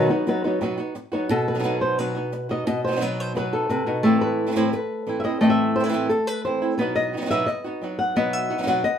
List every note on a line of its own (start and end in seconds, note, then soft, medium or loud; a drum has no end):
0.09 0.26 F#3 soft
0.09 0.27 B3 soft
0.09 0.26 B3 soft
0.09 0.27 D#4 soft
0.09 0.26 F#4 soft
0.09 0.26 B4 soft
0.27 0.44 F#3 medium
0.27 0.44 B3 medium
0.27 0.43 D#4 medium
0.27 0.43 B4 medium
0.27 muted nylon-string guitar stroke medium
0.44 0.60 F#3 soft
0.44 0.61 B3 soft
0.44 0.61 D#4 soft
0.44 0.61 F#4 soft
0.44 0.61 B4 soft
0.61 0.78 B2 medium
0.61 0.78 F#3 medium
0.61 0.78 B3 medium
0.61 0.78 D#4 medium
0.61 0.76 F#4 medium
0.61 muted nylon-string guitar stroke medium
0.78 0.95 B3 soft
0.78 0.95 D#4 soft
0.78 0.95 F#4 soft
0.95 muted nylon-string guitar stroke medium
1.12 1.30 F#3 soft
1.12 1.30 B3 soft
1.12 1.29 D#4 soft
1.12 1.30 D#4 soft
1.12 1.29 F#4 soft
1.12 1.29 B4 soft
1.29 2.65 B2 medium
1.29 1.82 A4 medium
1.29 muted nylon-string guitar stroke soft
1.48 1.81 B4 medium
1.54 1.58 F#3 soft
1.54 1.58 B3 soft
1.54 1.59 D#4 soft
1.54 1.59 F#4 soft
1.59 1.63 F#3 medium
1.59 1.63 B3 medium
1.59 1.63 D#4 soft
1.59 1.64 F#4 medium
1.64 1.97 B2 medium
1.64 1.98 F#3 medium
1.64 1.98 B3 medium
1.64 1.98 D#4 medium
1.64 1.98 F#4 medium
1.81 1.99 C5 medium
1.98 2.15 B2 medium
1.98 2.15 F#3 medium
1.98 2.16 B3 medium
1.98 2.15 D#4 medium
1.98 2.14 F#4 medium
1.98 2.50 B4 medium
2.15 2.32 B3 soft
2.15 2.32 D#4 soft
2.15 2.32 F#4 soft
2.32 muted nylon-string guitar stroke soft
2.49 2.67 B3 soft
2.49 2.67 D#4 soft
2.49 2.66 F#4 soft
2.49 2.66 D#5 medium
2.67 3.70 B2 medium
2.67 2.84 D#5 medium
2.67 muted nylon-string guitar stroke medium
2.85 2.90 F#3 soft
2.85 2.91 B3 soft
2.85 2.91 D#4 soft
2.85 3.02 C5 medium
2.89 2.95 F#3 soft
2.89 2.95 B3 medium
2.89 2.92 F#4 soft
2.93 3.00 F#3 medium
2.93 2.96 D#4 medium
2.93 2.96 F#4 soft
2.97 3.34 B2 medium
2.97 3.00 B3 medium
2.97 3.01 D#4 medium
2.97 3.01 F#4 medium
3.01 3.35 F#3 medium
3.01 3.35 B3 medium
3.01 3.35 D#4 medium
3.01 3.35 F#4 medium
3.01 3.20 B4 medium
3.20 3.36 C5 medium
3.35 3.52 B2 medium
3.35 3.52 F#3 medium
3.35 3.53 B3 medium
3.35 3.53 D#4 medium
3.35 3.51 F#4 medium
3.35 3.68 B4 medium
3.53 3.69 B3 soft
3.53 3.70 D#4 soft
3.53 3.69 F#4 soft
3.53 4.04 A4 medium
3.69 3.87 C3 medium
3.69 4.04 B4 medium
3.69 muted nylon-string guitar stroke soft
3.86 4.04 B2 medium
3.86 4.05 B3 soft
3.86 4.04 D#4 soft
3.86 4.03 F#4 soft
4.03 4.55 A2 soft
4.03 4.46 E3 medium
4.03 5.39 A3 medium
4.03 4.47 A3 medium
4.03 4.47 C4 medium
4.03 4.48 E4 medium
4.03 4.21 A4 medium
4.21 4.56 B4 medium
4.47 4.50 E3 soft
4.47 4.51 A3 soft
4.47 4.51 C4 soft
4.47 4.51 E4 soft
4.51 4.55 E3 medium
4.51 4.55 A3 medium
4.51 4.56 C4 medium
4.51 4.56 E4 medium
4.56 4.72 A2 medium
4.56 4.72 E3 medium
4.56 4.72 A3 medium
4.56 4.72 C4 medium
4.56 4.73 E4 medium
4.56 4.73 C5 medium
4.73 5.55 B4 medium
4.73 muted nylon-string guitar stroke soft
5.07 5.24 E3 soft
5.07 5.24 A3 soft
5.07 5.24 C4 soft
5.07 5.40 E4 soft
5.07 5.23 E4 soft
5.20 5.41 E4 soft
5.20 5.24 E5 medium
5.25 5.41 A3 soft
5.25 5.41 C4 soft
5.25 5.40 D#5 medium
5.41 5.92 A2 medium
5.41 5.78 E3 medium
5.41 6.76 A3 medium
5.41 5.79 A3 medium
5.41 5.79 C4 medium
5.41 5.80 E4 medium
5.41 5.49 D#5 medium
5.50 6.10 E5 medium
5.76 5.83 E3 soft
5.76 5.84 C5 medium
5.80 5.83 A3 soft
5.80 5.84 C4 soft
5.80 5.84 E4 soft
5.80 6.09 B4 medium
5.84 5.87 E3 soft
5.84 5.88 A3 medium
5.84 5.88 C4 soft
5.84 5.88 E4 medium
5.88 5.92 E3 soft
5.88 5.92 A3 medium
5.88 5.93 C4 medium
5.88 5.93 E4 medium
5.93 6.09 A2 medium
5.93 6.09 E3 medium
5.93 6.09 A3 medium
5.93 6.10 C4 medium
5.93 6.10 E4 medium
6.09 6.27 A4 medium
6.09 muted nylon-string guitar stroke soft
6.27 6.44 B4 medium
6.45 6.61 E3 soft
6.45 6.61 A3 soft
6.45 6.62 C4 soft
6.45 6.61 E4 soft
6.45 6.77 C5 medium
6.62 6.80 A3 soft
6.62 6.79 C4 soft
6.62 6.78 E4 soft
6.78 7.13 B2 medium
6.78 7.13 F#3 soft
6.78 8.14 B3 medium
6.78 7.13 B3 medium
6.78 7.13 D#4 medium
6.78 7.12 F#4 medium
6.78 6.95 B4 medium
6.96 7.45 D#5 medium
7.13 7.20 F#3 soft
7.13 7.17 B3 soft
7.13 7.16 D#4 soft
7.13 7.17 F#4 soft
7.17 7.21 B3 soft
7.17 7.21 D#4 soft
7.17 7.21 F#4 soft
7.21 7.25 F#3 soft
7.21 7.25 B3 medium
7.21 7.25 D#4 medium
7.21 7.26 F#4 medium
7.26 7.30 F#3 medium
7.26 7.30 B3 medium
7.26 7.30 D#4 medium
7.26 7.30 F#4 medium
7.30 7.46 B2 medium
7.30 7.47 F#3 medium
7.30 7.47 B3 medium
7.30 7.47 D#4 medium
7.30 7.47 F#4 medium
7.30 7.48 E5 medium
7.46 8.15 D#5 medium
7.46 muted nylon-string guitar stroke soft
7.64 7.81 B3 soft
7.64 7.82 D#4 soft
7.64 7.81 F#4 soft
7.81 8.15 F#3 soft
7.81 8.16 B3 soft
7.81 8.16 D#4 soft
7.81 8.16 F#4 soft
7.99 8.33 F#5 medium
8.16 8.50 B2 medium
8.16 8.50 F#3 medium
8.16 8.99 B3 medium
8.16 8.50 B3 medium
8.16 8.50 D#4 medium
8.16 8.49 F#4 medium
8.16 8.68 D#5 medium
8.33 8.67 E5 loud
8.50 8.57 B3 soft
8.50 8.58 D#4 soft
8.50 8.58 F#4 soft
8.58 8.61 F#3 soft
8.58 8.62 B3 soft
8.58 8.62 D#4 soft
8.58 8.63 F#4 soft
8.63 8.66 F#3 medium
8.63 8.66 B3 soft
8.63 8.67 D#4 medium
8.63 8.67 F#4 medium
8.67 8.83 B2 medium
8.67 8.84 F#3 medium
8.67 8.84 B3 medium
8.67 8.84 D#4 medium
8.67 8.84 F#4 medium
8.67 8.99 F#5 medium
8.84 8.99 D#5 medium
8.84 muted nylon-string guitar stroke medium